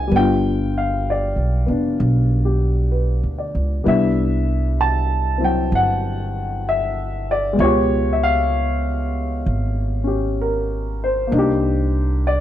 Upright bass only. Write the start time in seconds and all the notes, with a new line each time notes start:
0.11 G1
1.36 B1
1.68 F1
2.00 B1
3.23 D2
3.55 C#2
3.86 C2
5.72 G1
7.59 C#2
9.46 G#1
11.32 C2